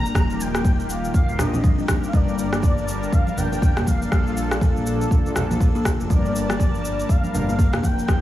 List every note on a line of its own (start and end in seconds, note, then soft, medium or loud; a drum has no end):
0.00 0.13 G3 medium
0.00 0.13 A#3 medium
0.00 0.11 D4 medium
0.00 0.13 D4 medium
0.00 0.13 G4 medium
0.00 0.13 A#4 loud
0.00 0.13 A#4 medium
0.00 0.13 A5 medium
0.00 0.42 A#5 loud
0.05 shaker soft
0.15 1.08 D#1 loud
0.15 2.11 D#3 medium
0.15 0.23 G3 loud
0.15 0.87 A#3 loud
0.15 2.11 A#3 medium
0.15 0.87 D#4 loud
0.15 2.11 F4 medium
0.15 2.11 G4 medium
0.15 0.87 G4 medium
0.15 0.87 A#4 loud
0.15 kick loud
0.15 cross-stick medium
0.15 high conga loud
0.15 shaker medium
0.30 shaker soft
0.40 0.91 G5 loud
0.40 shaker medium
0.54 0.64 A#3 medium
0.54 cross-stick medium
0.54 shaker soft
0.65 0.78 G4 medium
0.65 kick loud
0.65 high conga loud
0.65 shaker medium
0.80 shaker soft
0.89 1.37 A#3 medium
0.89 1.37 D#4 medium
0.89 1.37 G4 medium
0.89 1.37 A#4 medium
0.89 1.14 F5 medium
0.89 shaker medium
1.04 shaker soft
1.14 1.37 F5 loud
1.14 kick loud
1.14 shaker medium
1.29 1.38 D#1 loud
1.29 shaker soft
1.39 1.82 A#1 medium
1.39 1.54 A#3 medium
1.39 1.53 D4 loud
1.39 1.54 D#4 medium
1.39 1.54 G4 medium
1.39 1.54 A#4 medium
1.39 1.85 D#5 medium
1.39 cross-stick medium
1.39 low conga medium
1.39 shaker loud
1.54 1.63 C4 medium
1.54 high conga loud
1.54 shaker soft
1.64 1.77 G3 loud
1.64 kick loud
1.64 high conga medium
1.64 shaker medium
1.79 1.88 D4 medium
1.79 shaker soft
1.88 2.05 D#2 loud
1.88 2.02 G3 medium
1.88 2.11 A#3 loud
1.88 2.11 D#4 medium
1.88 2.11 G4 loud
1.88 2.11 A#4 loud
1.88 kick medium
1.88 cross-stick loud
1.88 high conga loud
1.88 shaker loud
2.03 shaker soft
2.08 2.15 F5 medium
2.13 3.06 G1 loud
2.13 4.10 G3 medium
2.13 2.21 G3 loud
2.13 2.85 A#3 loud
2.13 8.04 D4 medium
2.13 2.85 D4 medium
2.13 2.85 G4 medium
2.13 4.10 A#4 medium
2.13 2.85 A#4 loud
2.13 3.14 D5 loud
2.13 4.10 A5 medium
2.13 kick loud
2.13 high conga medium
2.13 shaker soft
2.28 shaker soft
2.39 shaker medium
2.53 2.62 A#3 medium
2.53 cross-stick medium
2.53 shaker soft
2.62 2.76 G4 medium
2.62 kick loud
2.62 high conga loud
2.62 shaker medium
2.78 shaker soft
2.88 3.35 A#3 medium
2.88 3.35 D4 medium
2.88 3.35 G4 medium
2.88 3.35 A#4 medium
2.88 shaker medium
3.03 shaker soft
3.12 3.39 F5 loud
3.12 kick loud
3.12 shaker medium
3.27 high conga loud
3.27 shaker soft
3.37 3.81 G1 loud
3.37 3.48 A#3 medium
3.37 3.49 D4 medium
3.37 3.49 G4 medium
3.37 3.49 A#4 loud
3.37 3.88 G5 loud
3.37 high conga medium
3.37 low conga medium
3.37 shaker medium
3.52 4.09 A#3 medium
3.52 3.61 A#3 medium
3.52 4.09 D4 medium
3.52 4.09 G4 medium
3.52 4.09 A#4 loud
3.52 shaker soft
3.62 3.75 G4 medium
3.62 kick loud
3.62 shaker medium
3.77 3.82 A#3 loud
3.77 cross-stick medium
3.77 low conga loud
3.77 shaker soft
3.86 4.04 F1 medium
3.86 4.01 F3 medium
3.86 4.86 F5 loud
3.86 kick medium
3.86 high conga loud
3.86 shaker medium
4.02 shaker soft
4.12 5.05 A#1 loud
4.12 4.20 G3 loud
4.12 4.84 A#3 loud
4.12 6.08 A#3 medium
4.12 4.84 D4 medium
4.12 4.84 F4 medium
4.12 4.84 A4 loud
4.12 6.08 A4 medium
4.12 kick loud
4.12 cross-stick medium
4.12 high conga medium
4.12 shaker soft
4.27 shaker soft
4.37 shaker medium
4.51 4.60 A#3 medium
4.51 cross-stick medium
4.51 shaker soft
4.61 4.75 G4 medium
4.61 kick loud
4.61 high conga loud
4.61 shaker medium
4.77 shaker soft
4.86 5.34 A#3 medium
4.86 5.34 D4 medium
4.86 5.34 F4 medium
4.86 5.34 A4 medium
4.86 shaker medium
5.01 shaker soft
5.11 kick loud
5.11 shaker medium
5.26 5.91 A#1 loud
5.26 shaker soft
5.36 5.47 A#3 medium
5.36 5.47 D4 medium
5.36 5.47 F4 medium
5.36 5.47 A4 loud
5.36 cross-stick medium
5.36 low conga medium
5.36 shaker medium
5.50 6.08 A#3 medium
5.50 5.60 A#3 medium
5.50 6.08 D4 medium
5.50 6.08 F4 medium
5.50 6.08 A4 loud
5.50 high conga medium
5.50 shaker soft
5.61 5.74 G4 medium
5.61 kick loud
5.61 high conga medium
5.61 shaker medium
5.75 5.81 A#3 loud
5.75 shaker soft
5.85 5.99 F3 medium
5.85 kick medium
5.85 cross-stick medium
5.85 high conga loud
5.85 shaker medium
6.00 6.06 F1 loud
6.00 shaker soft
6.10 7.03 G1 loud
6.10 6.18 G3 loud
6.10 8.07 G3 medium
6.10 6.82 A#3 loud
6.10 6.82 D4 medium
6.10 6.82 G4 medium
6.10 6.82 A#4 loud
6.10 8.07 A#4 medium
6.10 7.11 D5 loud
6.10 8.07 A5 medium
6.10 kick loud
6.10 high conga medium
6.10 shaker soft
6.25 shaker soft
6.36 shaker medium
6.49 6.59 A#3 medium
6.49 cross-stick medium
6.49 shaker soft
6.60 6.73 G4 medium
6.60 kick loud
6.60 high conga loud
6.60 shaker medium
6.75 shaker soft
6.85 7.32 A#3 medium
6.85 7.32 D4 medium
6.85 7.32 G4 medium
6.85 7.32 A#4 medium
6.85 shaker medium
7.00 shaker soft
7.09 7.85 F5 loud
7.09 kick loud
7.09 shaker medium
7.24 high conga medium
7.24 shaker soft
7.34 7.77 G1 loud
7.34 7.45 A#3 medium
7.34 7.45 D4 medium
7.34 7.45 G4 medium
7.34 7.45 A#4 loud
7.34 high conga medium
7.34 low conga medium
7.34 shaker medium
7.48 8.06 A#3 medium
7.48 7.58 A#3 medium
7.48 8.06 D4 medium
7.48 8.06 G4 medium
7.48 8.06 A#4 loud
7.48 shaker soft
7.59 7.72 G4 medium
7.59 kick loud
7.59 shaker soft
7.73 7.79 A#3 loud
7.73 cross-stick medium
7.73 low conga loud
7.73 shaker soft
7.83 8.01 F1 medium
7.83 7.98 F3 medium
7.83 8.21 G5 loud
7.83 kick medium
7.83 high conga loud
7.83 shaker medium
7.99 shaker soft
8.08 8.21 D#1 loud
8.08 8.21 D#3 medium
8.08 8.16 G3 loud
8.08 8.21 A#3 loud
8.08 8.21 A#3 medium
8.08 8.21 D#4 medium
8.08 8.21 F4 medium
8.08 8.21 G4 medium
8.08 8.21 A#4 loud
8.08 kick loud
8.08 cross-stick medium
8.08 high conga medium
8.08 shaker soft